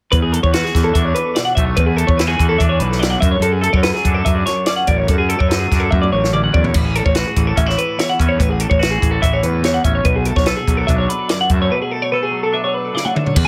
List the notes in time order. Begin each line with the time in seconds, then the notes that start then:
0.12 E2 B4, kick, closed hi-hat
0.22 G#4
0.33 A4, closed hi-hat
0.43 E2 C#5, kick
0.53 F#4 B4, snare, closed hi-hat
0.64 G#4, snare
0.74 E2 E3, kick, snare, closed hi-hat
0.84 A4
0.94 E2 D4 E5, kick, closed hi-hat
1.05 C#5
1.15 B4, closed hi-hat
1.35 B2 D5, snare, closed hi-hat
1.45 F#5
1.55 B1 A3 E5, kick, closed hi-hat
1.65 C#5
1.76 E2 B4, kick, closed hi-hat
1.86 G#4
1.97 A4, closed hi-hat
2.07 E2 C#5, kick
2.17 E4 B4, snare, closed hi-hat
2.27 F#4 G#4
2.39 E2 E3, kick, closed hi-hat
2.49 A4
2.58 E2 D4 E5, kick, closed hi-hat
2.69 C#5
2.79 B1 B4, closed hi-hat
2.92 snare
2.99 B2 D5, snare, closed hi-hat
3.10 F#5
3.21 F#2 E5, kick, closed hi-hat
3.31 C#5
3.40 F#2 A4, closed hi-hat
3.53 G#4
3.61 A4, closed hi-hat
3.73 F#2 C#5, kick
3.83 F#3 B4, snare, closed hi-hat
3.94 G#4, snare
4.04 F#2 D4, kick, closed hi-hat
4.15 A4
4.25 F#2 E5, kick, closed hi-hat
4.35 D5
4.46 F#2 C#5, snare, closed hi-hat
4.66 C#4 D5, snare, closed hi-hat
4.76 F#5
4.87 A1 F#2 D5, kick, closed hi-hat
4.97 C#5
5.08 F#2 A4, kick, closed hi-hat
5.18 G#4
5.29 A4, closed hi-hat
5.39 F#2 C#5, kick
5.49 F#3 B4, snare, closed hi-hat
5.59 G#4
5.71 F#2 D4, kick, snare, closed hi-hat
5.80 A4
5.91 F#2 E5, kick, high tom
6.02 D5, high tom
6.12 A1 F#2 C#5
6.24 snare
6.33 C#4 D5, mid tom
6.44 F#5
6.52 E2 F#2 D5, kick
6.64 C#5, floor tom
6.74 A1 A2 B4, kick, closed hi-hat, crash
6.85 G#4
6.95 A4, closed hi-hat
7.06 A1 C#5, kick
7.15 F#4 B4, snare, closed hi-hat
7.27 G#4
7.36 A1 E3, kick, closed hi-hat
7.47 A4
7.56 A1 C#4 E5, kick, closed hi-hat
7.66 E4 C#5, snare
7.78 B4, closed hi-hat
7.98 E2 C#5, snare, closed hi-hat
8.10 F#5
8.19 E2 C#4 E5, kick, closed hi-hat
8.29 C#5
8.37 A1 A2 B4, kick, closed hi-hat
8.49 G#4
8.60 A4, closed hi-hat
8.70 A1 C#5, kick
8.79 F#4 B4, snare, closed hi-hat
8.91 G#4
9.00 A1 E3, kick, closed hi-hat
9.11 A4
9.22 A1 E4 E5, kick, closed hi-hat
9.33 C#5
9.43 E2 B4, closed hi-hat
9.62 E2 C#5, snare, closed hi-hat
9.74 F#5
9.84 A1 C#4 E5, kick, closed hi-hat
9.95 C#5
10.04 B1 B2 B4, kick, closed hi-hat
10.16 G#4
10.25 A4, closed hi-hat
10.36 B1 C#5, kick, snare
10.46 A4 B4, snare, closed hi-hat
10.56 G#4
10.67 B1 F#3, kick, closed hi-hat
10.77 A4
10.87 B1 D4 E5, kick, closed hi-hat
10.98 C#5
11.09 B4, closed hi-hat
11.29 F#2 D5, snare, closed hi-hat
11.41 F#5
11.49 F#2 A3 E5, kick, closed hi-hat
11.62 C#5
11.70 B2 B4
11.82 G#4
11.91 A4
12.02 C#5
12.12 A4 B4
12.23 G#4
12.31 F#3
12.43 A4
12.52 D4 E5
12.64 C#5
12.74 B4
12.94 C#3 D5, snare
13.05 F#5, high tom
13.14 D3 E5, mid tom
13.24 C#5, floor tom
13.34 E2 B4, kick, crash